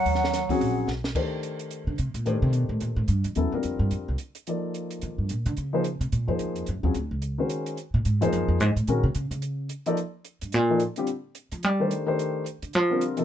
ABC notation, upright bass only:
X:1
M:4/4
L:1/8
Q:"Swing" 1/4=218
K:Cdor
V:1 name="Upright bass" clef=bass
E,,3 =E,, B,,,2 =B,,,2 | z4 z D, C, B,, | A,, C, =B,, A,, _B,, A,, G,, F,, | E,, =E,, F,, G,, F,, C,, z2 |
z4 E, G,, B,, D, | _D,3 C, B,, _G,, E,, F,, | _G,, E,, D,, _D,,2 z3 | z B,, _A,, F,, _G,, F,, A,, =A,, |
B,, C, _D, D,3 z2 | z3 G,, B,,2 z2 | z3 F, G,2 z2 | z3 D, F,2 z2 |]